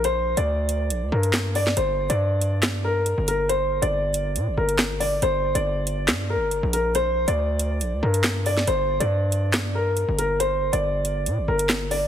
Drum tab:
HH |x--x--x-x--x--o-|x--x--x-x---x-x-|x--x--x-x--x--o-|x--x--x-x---x-x-|
CP |------------x---|--------x-------|------------x---|--------x-------|
SD |------------o--o|--------o-------|------------o---|--------o-------|

HH |x--x--x-x--x--o-|x--x--x-x---x-x-|x--x--x-x--x--o-|
CP |------------x---|--------x-------|------------x---|
SD |------------o--o|--------o-------|------------o---|